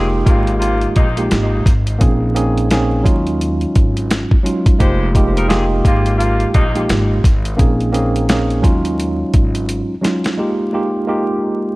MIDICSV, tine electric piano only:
0, 0, Header, 1, 2, 480
1, 0, Start_track
1, 0, Key_signature, -4, "minor"
1, 0, Tempo, 697674
1, 1383, Time_signature, 4, 2, 24, 8
1, 8089, End_track
2, 0, Start_track
2, 0, Title_t, "Tine electric piano"
2, 0, Program_c, 0, 4
2, 0, Note_on_c, 0, 56, 96
2, 0, Note_on_c, 0, 58, 85
2, 0, Note_on_c, 0, 63, 90
2, 0, Note_on_c, 0, 65, 93
2, 0, Note_on_c, 0, 67, 110
2, 722, Note_off_c, 0, 56, 0
2, 725, Note_off_c, 0, 58, 0
2, 726, Note_off_c, 0, 63, 0
2, 728, Note_off_c, 0, 65, 0
2, 730, Note_off_c, 0, 67, 0
2, 803, Note_on_c, 0, 56, 94
2, 807, Note_on_c, 0, 58, 78
2, 811, Note_on_c, 0, 63, 92
2, 814, Note_on_c, 0, 65, 90
2, 817, Note_on_c, 0, 67, 99
2, 1118, Note_off_c, 0, 56, 0
2, 1120, Note_off_c, 0, 58, 0
2, 1122, Note_off_c, 0, 63, 0
2, 1123, Note_off_c, 0, 65, 0
2, 1125, Note_off_c, 0, 67, 0
2, 1367, Note_on_c, 0, 58, 104
2, 1370, Note_on_c, 0, 60, 89
2, 1374, Note_on_c, 0, 61, 81
2, 1378, Note_on_c, 0, 63, 88
2, 1381, Note_on_c, 0, 68, 101
2, 1600, Note_off_c, 0, 58, 0
2, 1602, Note_off_c, 0, 60, 0
2, 1603, Note_off_c, 0, 61, 0
2, 1605, Note_off_c, 0, 63, 0
2, 1607, Note_off_c, 0, 68, 0
2, 1614, Note_on_c, 0, 58, 97
2, 1617, Note_on_c, 0, 60, 85
2, 1620, Note_on_c, 0, 61, 83
2, 1625, Note_on_c, 0, 63, 87
2, 1628, Note_on_c, 0, 68, 107
2, 1843, Note_off_c, 0, 58, 0
2, 1845, Note_off_c, 0, 60, 0
2, 1846, Note_off_c, 0, 61, 0
2, 1849, Note_off_c, 0, 63, 0
2, 1850, Note_off_c, 0, 68, 0
2, 1865, Note_on_c, 0, 58, 93
2, 1869, Note_on_c, 0, 60, 85
2, 1872, Note_on_c, 0, 61, 97
2, 1876, Note_on_c, 0, 63, 86
2, 1879, Note_on_c, 0, 68, 105
2, 2088, Note_on_c, 0, 54, 95
2, 2089, Note_off_c, 0, 61, 0
2, 2092, Note_off_c, 0, 63, 0
2, 2093, Note_on_c, 0, 56, 83
2, 2097, Note_on_c, 0, 61, 84
2, 2100, Note_on_c, 0, 63, 91
2, 2104, Note_off_c, 0, 58, 0
2, 2104, Note_on_c, 0, 65, 111
2, 2106, Note_off_c, 0, 60, 0
2, 2111, Note_off_c, 0, 68, 0
2, 2995, Note_off_c, 0, 54, 0
2, 2997, Note_off_c, 0, 56, 0
2, 2999, Note_off_c, 0, 61, 0
2, 3000, Note_off_c, 0, 63, 0
2, 3002, Note_off_c, 0, 65, 0
2, 3050, Note_on_c, 0, 54, 81
2, 3054, Note_on_c, 0, 56, 74
2, 3058, Note_on_c, 0, 61, 74
2, 3061, Note_on_c, 0, 63, 76
2, 3066, Note_on_c, 0, 65, 93
2, 3281, Note_off_c, 0, 54, 0
2, 3283, Note_off_c, 0, 56, 0
2, 3285, Note_off_c, 0, 61, 0
2, 3287, Note_off_c, 0, 63, 0
2, 3289, Note_off_c, 0, 65, 0
2, 3296, Note_on_c, 0, 56, 99
2, 3300, Note_on_c, 0, 58, 90
2, 3304, Note_on_c, 0, 63, 95
2, 3307, Note_on_c, 0, 65, 86
2, 3311, Note_on_c, 0, 67, 102
2, 3524, Note_off_c, 0, 56, 0
2, 3526, Note_off_c, 0, 58, 0
2, 3528, Note_off_c, 0, 63, 0
2, 3530, Note_off_c, 0, 65, 0
2, 3532, Note_off_c, 0, 67, 0
2, 3538, Note_on_c, 0, 56, 90
2, 3542, Note_on_c, 0, 58, 84
2, 3546, Note_on_c, 0, 63, 85
2, 3549, Note_on_c, 0, 65, 91
2, 3553, Note_on_c, 0, 67, 105
2, 3763, Note_off_c, 0, 56, 0
2, 3767, Note_off_c, 0, 58, 0
2, 3769, Note_off_c, 0, 63, 0
2, 3771, Note_off_c, 0, 65, 0
2, 3771, Note_on_c, 0, 56, 94
2, 3773, Note_off_c, 0, 67, 0
2, 3775, Note_on_c, 0, 58, 86
2, 3779, Note_on_c, 0, 63, 89
2, 3783, Note_on_c, 0, 65, 92
2, 3786, Note_on_c, 0, 67, 116
2, 4561, Note_off_c, 0, 56, 0
2, 4563, Note_off_c, 0, 58, 0
2, 4565, Note_off_c, 0, 63, 0
2, 4567, Note_off_c, 0, 65, 0
2, 4568, Note_off_c, 0, 67, 0
2, 4641, Note_on_c, 0, 56, 95
2, 4645, Note_on_c, 0, 58, 80
2, 4649, Note_on_c, 0, 63, 93
2, 4653, Note_on_c, 0, 65, 91
2, 4656, Note_on_c, 0, 67, 103
2, 4957, Note_off_c, 0, 56, 0
2, 4959, Note_off_c, 0, 58, 0
2, 4961, Note_off_c, 0, 63, 0
2, 4963, Note_off_c, 0, 65, 0
2, 4964, Note_off_c, 0, 67, 0
2, 5205, Note_on_c, 0, 58, 104
2, 5210, Note_on_c, 0, 60, 87
2, 5213, Note_on_c, 0, 61, 83
2, 5216, Note_on_c, 0, 63, 93
2, 5220, Note_on_c, 0, 68, 97
2, 5439, Note_off_c, 0, 58, 0
2, 5441, Note_off_c, 0, 60, 0
2, 5443, Note_off_c, 0, 61, 0
2, 5444, Note_off_c, 0, 63, 0
2, 5446, Note_off_c, 0, 68, 0
2, 5451, Note_on_c, 0, 58, 95
2, 5455, Note_on_c, 0, 60, 90
2, 5458, Note_on_c, 0, 61, 84
2, 5462, Note_on_c, 0, 63, 87
2, 5466, Note_on_c, 0, 68, 106
2, 5682, Note_off_c, 0, 58, 0
2, 5684, Note_off_c, 0, 60, 0
2, 5685, Note_off_c, 0, 61, 0
2, 5687, Note_off_c, 0, 63, 0
2, 5689, Note_off_c, 0, 68, 0
2, 5704, Note_on_c, 0, 58, 98
2, 5708, Note_on_c, 0, 60, 85
2, 5712, Note_on_c, 0, 61, 97
2, 5716, Note_on_c, 0, 63, 86
2, 5719, Note_on_c, 0, 68, 105
2, 5928, Note_off_c, 0, 61, 0
2, 5928, Note_on_c, 0, 54, 99
2, 5931, Note_off_c, 0, 63, 0
2, 5932, Note_on_c, 0, 56, 85
2, 5936, Note_on_c, 0, 61, 85
2, 5940, Note_on_c, 0, 63, 87
2, 5943, Note_on_c, 0, 65, 115
2, 5944, Note_off_c, 0, 58, 0
2, 5945, Note_off_c, 0, 60, 0
2, 5951, Note_off_c, 0, 68, 0
2, 6835, Note_off_c, 0, 54, 0
2, 6836, Note_off_c, 0, 56, 0
2, 6839, Note_off_c, 0, 61, 0
2, 6840, Note_off_c, 0, 63, 0
2, 6842, Note_off_c, 0, 65, 0
2, 6891, Note_on_c, 0, 54, 79
2, 6895, Note_on_c, 0, 56, 71
2, 6898, Note_on_c, 0, 61, 72
2, 6903, Note_on_c, 0, 63, 75
2, 6906, Note_on_c, 0, 65, 91
2, 7122, Note_off_c, 0, 54, 0
2, 7124, Note_off_c, 0, 56, 0
2, 7125, Note_off_c, 0, 61, 0
2, 7128, Note_off_c, 0, 63, 0
2, 7129, Note_off_c, 0, 65, 0
2, 7138, Note_on_c, 0, 56, 90
2, 7141, Note_on_c, 0, 58, 81
2, 7144, Note_on_c, 0, 63, 86
2, 7149, Note_on_c, 0, 65, 83
2, 7152, Note_on_c, 0, 67, 93
2, 7365, Note_off_c, 0, 56, 0
2, 7367, Note_off_c, 0, 58, 0
2, 7368, Note_off_c, 0, 63, 0
2, 7371, Note_off_c, 0, 65, 0
2, 7372, Note_off_c, 0, 67, 0
2, 7379, Note_on_c, 0, 56, 87
2, 7382, Note_on_c, 0, 58, 79
2, 7386, Note_on_c, 0, 63, 78
2, 7390, Note_on_c, 0, 65, 87
2, 7393, Note_on_c, 0, 67, 98
2, 7606, Note_off_c, 0, 56, 0
2, 7607, Note_off_c, 0, 58, 0
2, 7609, Note_off_c, 0, 63, 0
2, 7611, Note_off_c, 0, 65, 0
2, 7613, Note_off_c, 0, 67, 0
2, 7615, Note_on_c, 0, 56, 87
2, 7618, Note_on_c, 0, 58, 82
2, 7622, Note_on_c, 0, 63, 86
2, 7625, Note_on_c, 0, 65, 86
2, 7629, Note_on_c, 0, 67, 108
2, 8089, Note_off_c, 0, 56, 0
2, 8089, Note_off_c, 0, 58, 0
2, 8089, Note_off_c, 0, 63, 0
2, 8089, Note_off_c, 0, 65, 0
2, 8089, Note_off_c, 0, 67, 0
2, 8089, End_track
0, 0, End_of_file